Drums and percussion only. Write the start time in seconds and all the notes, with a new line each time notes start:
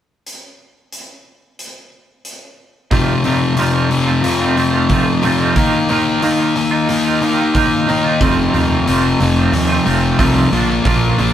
0.27 closed hi-hat
0.92 closed hi-hat
1.59 closed hi-hat
2.25 closed hi-hat
2.91 kick, open hi-hat
3.24 open hi-hat
3.57 open hi-hat
3.91 open hi-hat
4.24 open hi-hat
4.57 open hi-hat
4.89 kick, open hi-hat
5.23 open hi-hat
5.56 kick, open hi-hat
5.89 open hi-hat
6.22 open hi-hat
6.56 open hi-hat
6.89 open hi-hat
7.22 open hi-hat
7.55 kick, open hi-hat
7.89 open hi-hat
8.21 kick, open hi-hat
8.54 open hi-hat
8.87 open hi-hat
9.20 open hi-hat
9.53 open hi-hat
9.86 open hi-hat
10.19 kick, open hi-hat
10.53 open hi-hat
10.85 kick, open hi-hat
11.19 open hi-hat